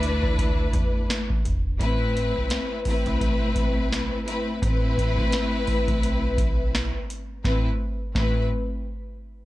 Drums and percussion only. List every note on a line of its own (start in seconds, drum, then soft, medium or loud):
0.03 closed hi-hat medium
0.23 kick medium
0.38 kick loud
0.38 closed hi-hat medium
0.73 kick loud
0.73 closed hi-hat medium
1.10 snare loud
1.10 closed hi-hat medium
1.30 kick medium
1.45 closed hi-hat medium
1.80 kick loud
1.80 closed hi-hat loud
2.17 closed hi-hat medium
2.50 snare loud
2.50 closed hi-hat medium
2.85 kick medium
2.85 open hi-hat medium
3.06 closed hi-hat medium
3.21 kick loud
3.21 closed hi-hat medium
3.56 kick medium
3.56 closed hi-hat medium
3.92 snare loud
3.92 closed hi-hat medium
4.28 closed hi-hat medium
4.62 kick loud
4.62 closed hi-hat loud
4.98 kick loud
4.98 closed hi-hat medium
5.18 kick medium
5.32 snare loud
5.32 closed hi-hat loud
5.67 kick medium
5.67 open hi-hat medium
5.88 kick medium
5.88 closed hi-hat medium
6.03 closed hi-hat medium
6.38 kick loud
6.38 closed hi-hat medium
6.75 snare loud
6.75 closed hi-hat medium
7.10 closed hi-hat medium
7.45 kick loud
7.45 snare medium
8.15 kick loud
8.15 snare medium